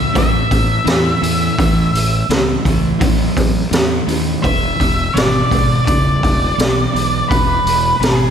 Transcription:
0.00 0.11 A2 medium
0.00 0.11 E3 medium
0.00 0.17 E5 medium
0.13 0.42 A1 medium
0.13 0.78 A2 medium
0.13 0.78 F#3 medium
0.13 kick loud
0.13 open hi-hat medium
0.18 2.27 E5 medium
0.51 0.78 A1 medium
0.51 kick medium
0.51 open hi-hat soft
0.85 1.13 E2 medium
0.85 1.18 A2 medium
0.85 1.18 E3 medium
0.85 snare loud
0.85 open hi-hat medium
1.22 1.49 E2 medium
1.22 1.54 A2 medium
1.22 1.54 E3 medium
1.22 open hi-hat soft
1.59 1.85 A1 medium
1.59 2.23 A2 medium
1.59 2.23 E3 medium
1.59 kick loud
1.59 open hi-hat medium
1.93 2.20 A1 medium
1.93 open hi-hat medium
2.29 2.56 C#2 medium
2.29 2.62 A2 medium
2.29 2.62 E3 medium
2.29 snare loud
2.29 open hi-hat medium
2.65 2.92 C#2 medium
2.65 2.97 A2 medium
2.65 2.97 E3 medium
2.65 kick medium
2.65 open hi-hat soft
2.99 3.28 A1 medium
2.99 3.64 A2 medium
2.99 3.65 F#3 medium
2.99 kick loud
2.99 open hi-hat medium
3.37 3.64 A1 medium
3.37 kick medium
3.37 open hi-hat medium
3.71 3.99 E2 medium
3.71 4.04 A2 medium
3.71 4.04 E3 medium
3.71 snare loud
3.71 open hi-hat medium
4.07 4.35 D#2 medium
4.07 4.40 A2 medium
4.07 4.40 E3 medium
4.07 open hi-hat soft
4.43 4.71 E1 medium
4.43 5.08 E2 medium
4.43 5.08 B2 medium
4.43 5.17 E5 medium
4.43 kick loud
4.43 open hi-hat medium
4.80 5.07 E1 medium
4.80 kick medium
4.80 open hi-hat soft
5.13 5.42 G#1 medium
5.13 5.47 E2 medium
5.13 5.48 B2 medium
5.13 5.84 D5 medium
5.13 open hi-hat medium
5.18 snare loud
5.50 5.78 G#1 medium
5.50 5.83 E2 medium
5.50 5.83 B2 medium
5.50 kick medium
5.50 open hi-hat soft
5.86 6.14 E1 medium
5.86 6.51 E2 medium
5.86 6.51 C#3 medium
5.86 7.28 D5 medium
5.86 kick loud
5.86 open hi-hat medium
6.23 6.50 E1 medium
6.23 kick medium
6.23 open hi-hat soft
6.58 6.85 B1 medium
6.58 6.90 E2 medium
6.58 6.91 B2 medium
6.58 snare loud
6.58 open hi-hat medium
6.93 7.21 B1 medium
6.93 7.26 E2 medium
6.93 7.26 B2 medium
6.93 open hi-hat soft
7.29 7.57 E1 medium
7.29 7.94 E2 medium
7.29 7.95 B2 medium
7.29 7.97 B4 medium
7.29 kick loud
7.29 open hi-hat medium
7.64 7.92 E1 medium
7.64 open hi-hat soft
7.99 8.27 G#1 medium
7.99 8.30 E2 medium
7.99 8.30 B2 medium
7.99 8.30 G#4 medium
7.99 open hi-hat medium
8.04 snare loud

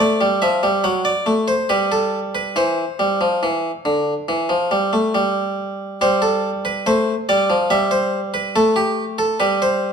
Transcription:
0.00 0.20 A3 medium
0.00 0.26 D5 medium
0.21 0.41 G3 medium
0.42 0.63 F3 medium
0.42 0.68 E5 medium
0.63 0.84 G3 medium
0.84 1.11 F#3 medium
0.84 1.05 F#5 medium
1.05 1.32 D5 medium
1.26 1.53 A3 medium
1.48 1.69 C5 medium
1.69 2.54 G3 medium
1.69 1.91 B4 medium
1.92 2.18 A4 medium
2.35 2.56 B4 medium
2.56 2.83 E3 medium
2.56 5.55 C5 medium
2.99 3.20 G3 medium
3.21 3.42 F3 medium
3.43 3.70 E3 medium
3.85 4.12 D3 medium
4.29 4.50 E3 medium
4.49 4.71 F3 medium
4.71 4.93 G3 medium
4.93 5.14 A3 medium
5.15 5.99 G3 medium
6.01 6.85 G3 medium
6.01 6.23 C5 loud
6.22 6.49 A4 medium
6.65 6.86 B4 medium
6.86 7.13 A3 medium
6.86 7.13 C5 medium
7.29 7.50 G3 medium
7.29 7.56 D5 medium
7.50 7.71 F3 medium
7.70 8.54 G3 medium
7.70 7.92 E5 loud
7.91 8.18 C5 medium
8.34 8.55 B4 medium
8.56 9.39 A3 medium
8.56 8.77 A4 medium
8.76 9.03 G4 medium
9.18 9.40 A4 medium
9.40 9.93 G3 medium
9.40 9.61 B4 loud
9.62 9.89 C5 medium

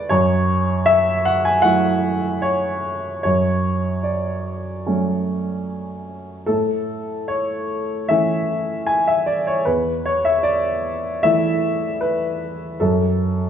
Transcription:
0.00 0.11 A3 medium
0.00 0.11 B3 medium
0.00 0.12 E4 medium
0.00 0.11 B4 loud
0.00 0.09 C#5 loud
0.00 0.11 D5 loud
0.09 3.21 F#2 medium
0.09 0.87 C#5 loud
0.86 1.25 E5 loud
1.25 1.45 F#5 loud
1.45 1.65 G#5 medium
1.62 3.20 F#3 medium
1.62 3.20 A3 medium
1.62 3.20 E4 medium
1.62 2.42 F#5 loud
2.42 3.22 C#5 medium
3.23 6.45 F#2 medium
3.23 4.05 C#5 medium
4.03 6.07 D5 medium
4.86 6.45 F#3 soft
4.86 6.45 A3 soft
4.86 6.45 C#4 soft
6.46 9.62 A2 medium
6.46 7.28 A4 medium
7.28 8.08 C#5 medium
8.09 9.63 E3 soft
8.09 9.63 A3 soft
8.09 9.63 C#4 soft
8.09 8.88 E5 medium
8.87 9.07 G#5 medium
9.07 9.27 E5 medium
9.26 9.46 D5 medium
9.47 9.66 C#5 medium
9.65 12.76 E2 medium
9.65 10.05 B4 medium
10.06 10.25 C#5 medium
10.25 10.45 E5 medium
10.43 11.23 D5 medium
11.23 12.76 E3 soft
11.23 12.77 A3 medium
11.23 12.77 E4 medium
11.23 12.01 E5 medium
12.01 12.80 B4 medium
12.80 13.50 F#2 medium
12.80 13.50 A4 medium

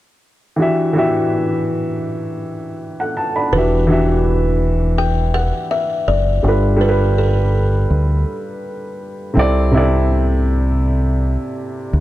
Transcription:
0.56 0.82 E3 medium
0.56 0.83 D4 medium
0.56 0.83 F#4 medium
0.61 0.84 G4 medium
0.61 0.85 E5 medium
0.93 1.88 E3 medium
0.93 1.89 D4 medium
0.93 1.90 F#4 medium
0.98 1.91 G4 medium
0.98 1.91 E5 medium
3.00 3.15 A4 soft
3.00 3.15 F#5 medium
3.17 3.35 A5 medium
3.36 3.70 D5 soft
3.36 3.70 B5 medium
3.52 5.51 E1 loud
3.52 3.76 E3 medium
3.52 3.77 D4 medium
3.52 3.78 F#4 medium
3.52 5.03 B4 medium
3.57 3.79 G4 medium
3.57 3.79 E5 medium
3.87 4.81 E3 medium
3.87 4.82 D4 medium
3.87 4.83 F#4 medium
3.87 4.83 G4 medium
3.92 4.84 E5 medium
4.98 5.36 G5 loud
5.34 5.72 F#5 loud
5.71 6.05 E5 medium
6.08 6.41 F#1 medium
6.08 6.83 D5 medium
6.43 7.86 G1 loud
6.43 6.68 G3 medium
6.43 6.68 D4 medium
6.43 6.69 F4 medium
6.47 6.70 A4 medium
6.47 6.71 B4 medium
6.77 7.73 G3 medium
6.77 7.73 D4 medium
6.77 7.74 F4 medium
6.81 7.75 A4 medium
6.81 6.88 A#4 medium
6.81 7.18 B4 medium
6.89 7.79 B4 medium
7.18 8.97 A4 medium
7.90 8.23 D2 medium
9.33 11.36 C2 loud
9.33 9.60 C3 medium
9.33 9.60 C4 medium
9.33 9.61 E4 medium
9.38 9.62 A4 medium
9.38 9.62 D5 loud
9.71 10.66 C3 medium
9.71 10.67 C4 medium
9.71 10.68 E4 medium
9.76 10.69 A4 medium
9.76 10.69 D5 medium
11.93 12.00 D2 medium

